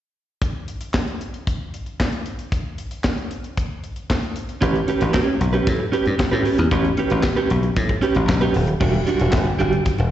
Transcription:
0.42 kick loud
0.42 closed hi-hat medium
0.68 closed hi-hat medium
0.81 closed hi-hat medium
0.94 kick loud
0.94 snare loud
0.94 clap medium
1.08 closed hi-hat soft
1.21 closed hi-hat medium
1.34 closed hi-hat soft
1.47 kick loud
1.47 closed hi-hat medium
1.74 closed hi-hat medium
1.86 closed hi-hat soft
2.00 kick loud
2.00 snare loud
2.00 clap medium
2.13 closed hi-hat soft
2.26 closed hi-hat medium
2.39 closed hi-hat soft
2.52 kick loud
2.52 closed hi-hat medium
2.78 closed hi-hat medium
2.91 closed hi-hat medium
3.04 kick loud
3.04 snare loud
3.04 clap medium
3.18 closed hi-hat soft
3.31 closed hi-hat medium
3.44 closed hi-hat soft
3.57 kick loud
3.57 closed hi-hat medium
3.84 closed hi-hat soft
3.96 closed hi-hat soft
4.10 kick loud
4.10 snare loud
4.10 clap medium
4.23 closed hi-hat soft
4.36 closed hi-hat medium
4.49 closed hi-hat soft
4.61 4.80 A1 loud
4.61 4.78 C#4 medium
4.61 4.79 G4 medium
4.61 4.79 B4 medium
4.61 kick loud
4.61 closed hi-hat medium
4.76 closed hi-hat soft
4.87 5.01 C#4 medium
4.87 5.00 G4 medium
4.87 4.99 B4 medium
4.87 closed hi-hat medium
5.00 5.11 A1 medium
5.00 5.12 C#4 soft
5.00 5.13 G4 medium
5.00 5.14 B4 medium
5.00 closed hi-hat medium
5.13 5.34 C#4 medium
5.13 5.27 G4 medium
5.13 5.26 B4 medium
5.13 kick loud
5.13 snare loud
5.13 clap medium
5.27 muted clean electric guitar stroke soft
5.40 5.59 B1 medium
5.40 muted clean electric guitar stroke soft
5.40 closed hi-hat medium
5.53 5.67 C#4 medium
5.53 5.67 G4 medium
5.53 5.66 B4 medium
5.53 closed hi-hat soft
5.67 5.85 A2 medium
5.67 kick loud
5.67 closed hi-hat medium
5.79 muted clean electric guitar stroke soft
5.92 6.09 C#4 medium
5.92 6.06 G4 medium
5.92 6.05 B4 loud
5.92 closed hi-hat medium
6.06 6.15 G2 medium
6.06 muted clean electric guitar stroke soft
6.06 closed hi-hat soft
6.18 muted clean electric guitar stroke soft
6.18 muted slap bass stroke soft
6.18 kick loud
6.18 snare loud
6.18 clap medium
6.31 6.41 A2 medium
6.31 6.44 C#4 medium
6.31 6.45 G4 medium
6.31 6.46 B4 medium
6.45 6.58 C#4 medium
6.45 6.59 G4 medium
6.45 6.57 B4 medium
6.45 open hi-hat medium
6.58 6.68 E2 medium
6.58 muted clean electric guitar stroke medium
6.58 closed hi-hat soft
6.71 6.90 A1 loud
6.71 6.88 C#4 medium
6.71 6.84 G4 medium
6.71 6.83 B4 medium
6.71 kick loud
6.71 closed hi-hat medium
6.84 muted clean electric guitar stroke medium
6.84 closed hi-hat soft
6.97 7.11 C#4 medium
6.97 7.11 G4 medium
6.97 7.10 B4 medium
6.97 closed hi-hat medium
7.10 7.20 A1 medium
7.10 7.23 C#4 medium
7.10 7.24 G4 medium
7.10 7.24 B4 medium
7.10 closed hi-hat medium
7.23 muted clean electric guitar stroke soft
7.23 kick loud
7.23 snare loud
7.23 clap loud
7.36 7.49 C#4 medium
7.36 7.49 G4 medium
7.36 7.50 B4 medium
7.36 closed hi-hat soft
7.50 7.69 B1 medium
7.50 muted clean electric guitar stroke soft
7.50 closed hi-hat medium
7.63 muted clean electric guitar stroke soft
7.63 closed hi-hat soft
7.76 7.95 A2 loud
7.76 kick loud
7.76 closed hi-hat medium
7.89 muted clean electric guitar stroke soft
7.89 kick medium
7.89 closed hi-hat soft
8.02 8.19 C#4 medium
8.02 8.15 G4 loud
8.02 8.14 B4 loud
8.02 closed hi-hat medium
8.15 8.25 A1 medium
8.15 muted clean electric guitar stroke soft
8.15 closed hi-hat soft
8.28 8.47 B1 loud
8.28 muted clean electric guitar stroke soft
8.28 kick loud
8.28 snare loud
8.28 clap medium
8.41 8.54 C#4 medium
8.41 8.55 G4 medium
8.41 8.55 B4 medium
8.41 closed hi-hat soft
8.54 8.73 D#1 medium
8.54 muted clean electric guitar stroke soft
8.54 open hi-hat medium
8.67 muted clean electric guitar stroke medium
8.67 closed hi-hat soft
8.80 8.99 E1 loud
8.80 8.97 G3 medium
8.80 8.94 D4 medium
8.80 8.93 F#4 medium
8.80 kick loud
8.80 crash loud
8.94 muted clean electric guitar stroke soft
9.06 9.20 G3 medium
9.06 9.19 D4 medium
9.06 9.19 F#4 medium
9.06 closed hi-hat medium
9.19 9.30 E1 medium
9.19 9.31 G3 soft
9.19 9.32 D4 medium
9.19 9.33 F#4 medium
9.19 closed hi-hat medium
9.32 9.51 G1 medium
9.32 muted clean electric guitar stroke soft
9.32 kick loud
9.32 snare loud
9.32 clap loud
9.46 muted clean electric guitar stroke medium
9.59 9.78 G1 loud
9.59 9.76 G3 medium
9.59 9.72 D4 medium
9.59 9.71 F#4 medium
9.59 closed hi-hat medium
9.73 muted clean electric guitar stroke soft
9.73 closed hi-hat soft
9.86 kick loud
9.86 snare soft
9.86 closed hi-hat medium
9.98 10.08 E1 medium
9.98 muted clean electric guitar stroke soft
9.98 closed hi-hat soft

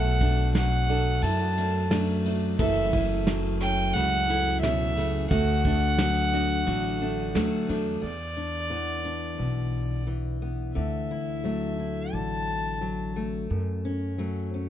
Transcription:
0.00 1.19 B1 loud
0.00 1.23 B2 medium
0.00 0.20 A3 medium
0.00 0.90 A4 medium
0.00 0.51 F#5 medium
0.21 1.56 A3 medium
0.21 1.57 D4 medium
0.21 kick medium
0.21 ride medium
0.55 1.90 F#3 medium
0.55 1.23 F#4 medium
0.55 1.24 F#5 medium
0.55 snare loud
0.55 ride medium
0.89 1.90 D4 medium
0.89 2.59 A4 medium
0.89 ride medium
1.23 2.55 F#2 loud
1.23 2.55 F#2 medium
1.23 1.39 E4 medium
1.23 1.91 A5 medium
1.23 ride medium
1.40 2.66 F#4 medium
1.57 2.24 A3 medium
1.57 2.25 D4 medium
1.57 ride medium
1.90 2.96 F#3 medium
1.90 5.31 A3 medium
1.90 2.66 D4 medium
1.90 snare loud
1.90 ride medium
2.25 2.66 A3 medium
2.25 2.55 D4 medium
2.25 ride medium
2.58 3.91 F#1 loud
2.58 5.27 F#2 medium
2.58 5.31 E3 medium
2.58 3.62 A4 medium
2.58 3.23 E5 loud
2.58 kick loud
2.58 ride medium
2.93 4.28 A3 medium
2.93 4.29 E4 medium
2.93 kick medium
2.93 ride medium
3.27 5.27 F#3 medium
3.27 snare loud
3.27 ride medium
3.60 4.61 C#4 medium
3.60 5.27 A4 medium
3.60 3.94 G5 loud
3.60 ride medium
3.93 5.27 C#2 loud
3.93 4.63 C#3 medium
3.93 5.38 F#4 medium
3.93 4.60 F#5 loud
3.93 ride medium
4.29 4.95 A3 medium
4.29 5.27 E4 medium
4.29 ride medium
4.61 4.97 B2 medium
4.61 5.38 C#4 medium
4.61 5.26 E5 loud
4.61 snare medium
4.61 ride medium
4.96 5.31 C#3 medium
4.96 5.29 A3 medium
4.96 ride medium
5.30 6.63 D2 loud
5.30 6.65 D3 medium
5.30 5.63 A3 medium
5.30 6.33 F#4 medium
5.30 7.65 F#5 medium
5.30 kick medium
5.30 ride medium
5.65 7.00 A3 medium
5.65 7.01 D4 medium
5.65 kick medium
5.65 ride medium
5.98 7.33 F#3 medium
5.98 6.65 F#4 medium
5.98 snare loud
5.98 ride medium
6.33 7.34 D4 medium
6.33 8.04 F#4 medium
6.33 ride soft
6.66 7.32 A1 loud
6.66 7.99 D3 medium
6.66 8.10 F#4 medium
6.66 ride medium
7.01 7.68 A3 medium
7.01 7.68 D4 medium
7.01 ride medium
7.35 7.65 D2 medium
7.35 7.99 F#3 medium
7.35 8.03 A3 medium
7.35 8.10 D4 medium
7.35 snare loud
7.35 ride medium
7.69 8.00 E2 medium
7.69 8.10 A3 medium
7.69 7.99 D4 medium
7.69 ride medium
8.01 10.75 E2 medium
8.01 9.35 E2 medium
8.01 10.04 D5 medium
8.37 9.04 D4 soft
8.70 10.06 E3 medium
8.70 10.41 B3 soft
9.05 10.72 D4 soft
9.38 10.72 B1 medium
9.38 10.07 B2 soft
10.07 11.43 E3 medium
10.42 10.72 B3 soft
10.75 12.09 D2 medium
10.75 12.12 D3 medium
10.75 12.15 E5 medium
11.11 11.78 E4 medium
11.44 12.80 F#3 medium
11.44 13.16 A3 soft
11.80 13.46 E4 soft
12.13 13.46 A1 medium
12.13 13.46 D3 medium
12.13 13.16 A5 medium
12.81 13.46 F#3 medium
13.16 14.19 A3 soft
13.50 14.69 F#2 medium
13.85 14.54 C#4 medium
14.18 14.69 F#3 medium
14.18 14.69 A3 medium
14.54 14.69 C#4 soft

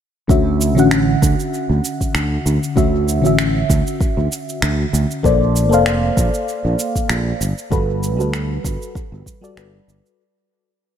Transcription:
0.28 0.77 D2 medium
0.28 0.72 D3 medium
0.28 0.73 C#4 medium
0.28 0.73 F#4 medium
0.28 0.74 E5 medium
0.28 kick loud
0.28 cabasa soft
0.61 cabasa medium
0.75 1.15 A1 medium
0.75 2.72 D3 medium
0.75 2.73 C#4 medium
0.75 2.74 F#4 medium
0.75 cabasa soft
0.79 2.75 F#5 medium
0.91 finger snap loud
0.91 cabasa soft
1.22 1.33 D2 medium
1.22 kick loud
1.22 cabasa medium
1.40 cabasa soft
1.54 cabasa soft
1.69 1.79 D2 medium
1.85 cabasa medium
2.01 kick medium
2.01 cabasa soft
2.15 2.36 D2 medium
2.15 finger snap loud
2.15 cabasa soft
2.46 2.57 D2 medium
2.46 cabasa medium
2.63 cabasa soft
2.76 3.24 D2 medium
2.76 3.20 D3 medium
2.76 3.20 C#4 medium
2.76 3.21 F#4 medium
2.76 3.21 E5 medium
2.76 kick loud
2.76 cabasa soft
3.08 cabasa medium
3.22 3.62 A1 medium
3.22 5.19 D3 medium
3.22 5.20 C#4 medium
3.22 5.21 F#4 medium
3.22 cabasa soft
3.26 5.22 E5 medium
3.39 finger snap loud
3.39 cabasa soft
3.70 3.81 D2 medium
3.70 kick loud
3.70 cabasa medium
3.87 cabasa soft
4.01 kick loud
4.01 cabasa soft
4.17 4.27 D2 medium
4.32 cabasa medium
4.49 cabasa soft
4.62 4.84 D2 loud
4.62 finger snap loud
4.62 cabasa soft
4.93 5.04 D2 medium
4.93 cabasa medium
5.11 cabasa soft
5.23 5.72 A#1 medium
5.23 5.67 A#3 medium
5.23 5.68 A4 medium
5.23 5.68 C5 medium
5.23 5.69 D5 loud
5.23 kick loud
5.23 cabasa soft
5.56 cabasa medium
5.69 6.09 F1 loud
5.69 7.38 A#3 medium
5.69 7.39 A4 medium
5.69 7.39 C5 medium
5.69 cabasa soft
5.74 7.40 F5 loud
5.86 finger snap loud
5.86 cabasa soft
6.17 6.28 A#1 medium
6.17 kick loud
6.17 cabasa medium
6.34 cabasa soft
6.48 cabasa soft
6.65 6.74 A#1 medium
6.79 cabasa medium
6.96 kick medium
6.96 cabasa soft
7.09 7.31 A#1 loud
7.09 finger snap loud
7.09 cabasa soft
7.41 7.52 G1 medium
7.41 cabasa medium
7.58 cabasa soft
7.70 8.19 G1 medium
7.70 8.15 G3 medium
7.70 8.15 F#4 medium
7.70 8.16 A4 medium
7.70 8.16 B4 medium
7.70 kick loud
7.70 cabasa soft
8.03 cabasa medium
8.17 8.57 D2 loud
8.17 9.39 G3 medium
8.17 9.39 F#4 medium
8.17 9.40 A4 medium
8.17 cabasa soft
8.21 9.41 B4 medium
8.34 finger snap loud
8.34 cabasa soft
8.64 8.76 G1 medium
8.64 kick loud
8.64 cabasa medium
8.82 cabasa soft
8.95 kick loud
8.95 cabasa soft
9.12 9.21 G1 medium
9.26 kick medium
9.26 cabasa medium
9.41 9.53 G3 medium
9.41 9.53 F#4 medium
9.41 9.54 A4 medium
9.41 9.54 D5 medium
9.41 cabasa soft
9.56 9.79 G1 loud
9.56 10.15 G3 medium
9.56 10.15 F#4 medium
9.56 10.16 A4 medium
9.56 10.16 B4 medium
9.56 finger snap loud
9.56 cabasa soft
9.88 9.99 G1 medium
9.88 cabasa medium
10.06 cabasa soft

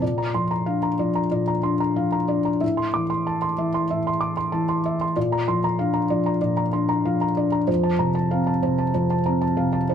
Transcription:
0.02 1.28 A#2 soft
0.02 0.28 D5 soft
0.18 0.44 A#5 soft
0.34 0.87 F3 soft
0.34 0.51 C6 soft
0.51 0.77 A#5 soft
0.66 1.19 D4 soft
0.66 0.93 F5 soft
0.83 1.09 A#5 soft
0.99 1.51 F3 soft
0.99 1.25 D5 soft
1.15 1.41 A#5 soft
1.31 2.58 A#2 soft
1.31 1.58 D5 soft
1.48 1.74 A#5 soft
1.63 2.16 D4 soft
1.63 1.80 C6 soft
1.80 2.07 A#5 soft
1.96 2.49 F3 soft
1.96 2.23 F5 soft
2.12 2.39 A#5 soft
2.28 2.62 D4 soft
2.28 2.55 D5 soft
2.45 2.62 A#5 soft
2.61 3.85 A2 medium
2.61 2.87 E5 soft
2.77 3.04 C6 soft
2.94 3.45 E3 soft
2.94 3.10 D6 soft
3.10 3.36 C6 soft
3.27 3.52 A5 soft
3.42 3.68 C6 soft
3.58 4.08 E3 soft
3.58 3.84 E5 soft
3.74 3.99 C6 soft
3.90 5.13 A2 soft
3.90 4.15 E5 soft
4.07 4.31 C6 soft
4.21 4.37 D6 soft
4.37 4.62 C6 soft
4.52 5.04 E3 soft
4.52 4.78 A5 soft
4.69 4.94 C6 soft
4.86 5.11 E5 soft
5.01 5.17 C6 soft
5.16 6.38 A#2 medium
5.16 5.42 D5 soft
5.32 5.58 A#5 soft
5.48 5.98 F3 soft
5.48 5.64 C6 medium
5.64 5.89 A#5 medium
5.79 6.29 D4 soft
5.79 6.04 F5 medium
5.94 6.19 A#5 soft
6.10 6.61 F3 soft
6.10 6.35 D5 medium
6.26 6.51 A#5 soft
6.41 7.64 A#2 medium
6.41 6.67 D5 soft
6.57 6.83 A#5 soft
6.73 7.24 D4 soft
6.73 6.89 C6 soft
6.89 7.14 A#5 soft
7.05 7.56 F3 soft
7.05 7.31 F5 medium
7.21 7.46 A#5 soft
7.37 7.68 D4 soft
7.37 7.62 D5 soft
7.52 7.68 A#5 medium
7.68 8.91 F2 medium
7.68 7.93 C5 medium
7.83 8.09 A5 soft
7.99 8.50 C3 soft
7.99 8.15 A#5 medium
8.15 8.41 A5 medium
8.31 8.83 C4 medium
8.31 8.57 F5 medium
8.47 8.73 A5 soft
8.62 9.14 C3 soft
8.62 8.89 C5 soft
8.79 9.04 A5 soft
8.94 9.95 F2 soft
8.94 9.20 C5 soft
9.10 9.36 A5 soft
9.26 9.77 C4 soft
9.26 9.42 A#5 soft
9.41 9.67 A5 soft
9.57 9.95 C3 soft
9.57 9.83 F5 medium
9.73 9.95 A5 soft
9.89 9.95 C4 soft
9.89 9.95 C5 soft

